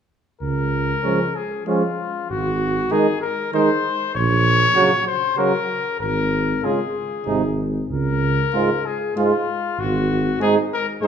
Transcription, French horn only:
1.04 G#3
1.67 G#3
2.91 G#3
3.53 G#3
4.76 F#3
5.38 F#3
6.65 G#3
7.27 G#3
8.54 G#3
9.16 G#3
10.40 G#3
11.02 G#3

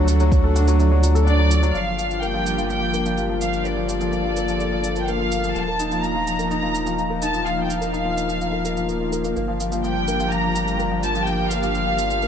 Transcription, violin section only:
1.27 D5
1.74 F5
2.21 G5
2.69 G5
3.41 F5
3.65 D5
3.89 D5
5.01 G5
5.08 F5
5.56 A5
6.03 A#5
6.51 A#5
7.22 A5
7.46 F5
7.63 G5
7.70 F5
9.84 G5
10.32 A#5
11.03 A5
11.27 G5
11.50 F5

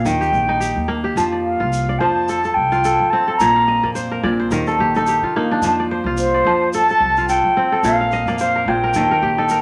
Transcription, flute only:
0.06 G5
1.45 F5
1.99 A5
2.54 G5
3.10 A5
3.37 A#5
6.17 C5
6.74 A5
7.29 G5
7.85 F5
8.39 F5
8.69 G5

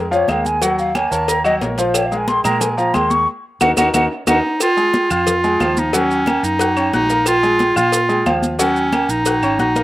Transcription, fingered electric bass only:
Already playing: F2
0.28 D#2
1.12 D#2
1.62 A#1
2.44 A#2
2.94 D#2
3.61 D#2
3.77 D#2
3.94 D#2
4.27 D#2
5.11 F2
5.61 D#2
6.43 F#2
6.93 A#1
7.76 A#2
8.26 D#2
9.09 A#1
9.42 G#1
9.59 A#1

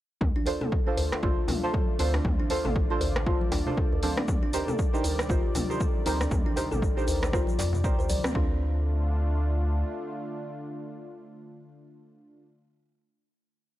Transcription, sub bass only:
0.21 D2
1.23 A1
1.99 D2
2.25 D2
2.65 A1
4.28 D2
5.30 A1
6.06 D2
6.31 D2
6.72 A1
7.59 F2
7.84 A1
8.09 D2
8.35 D2

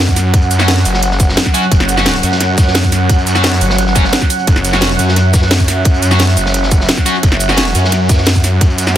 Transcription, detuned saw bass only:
Already playing: F#2
0.85 F#1
1.72 F#1
2.23 F#2
3.61 G1
4.47 F#1
4.99 F#2
6.37 F#1
7.23 F#1
7.75 F#2

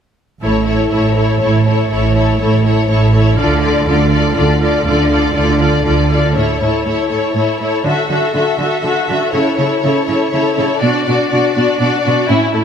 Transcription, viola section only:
0.42 E4
0.64 E4
0.92 E4
1.17 E4
1.42 E4
1.69 E4
1.92 E4
2.16 E4
2.41 E4
2.66 E4
2.91 E4
3.16 E4
3.39 F4
3.64 F4
3.88 F4
4.11 F4
4.36 F4
4.61 F4
4.86 F4
5.12 F4
5.35 F4
5.60 F4
5.86 F4
6.10 F4
6.35 E4
6.63 E4
6.89 E4
7.12 E4
7.38 E4
7.62 E4
7.86 F#4
8.10 F#4
8.34 F#4
8.60 F#4
8.87 F#4
9.11 F#4
9.33 E4
9.57 E4
9.83 E4
10.07 E4
10.32 E4
10.56 E4
10.81 D4
11.08 D4
11.32 D4
11.56 D4
11.80 D4
12.04 D4
12.29 E4
12.55 E4

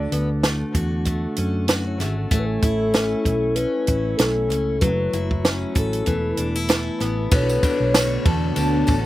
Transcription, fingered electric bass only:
0.12 D2
0.75 E2
1.38 F#2
2.00 G#1
2.32 A1
2.63 A1
3.26 B1
3.88 A1
4.20 B1
4.51 C#2
4.82 F#1
5.13 F#1
5.76 A1
6.08 E1
6.38 E1
7.01 A1
7.32 B1
7.80 B1
8.26 E2
8.57 D2
8.89 A1

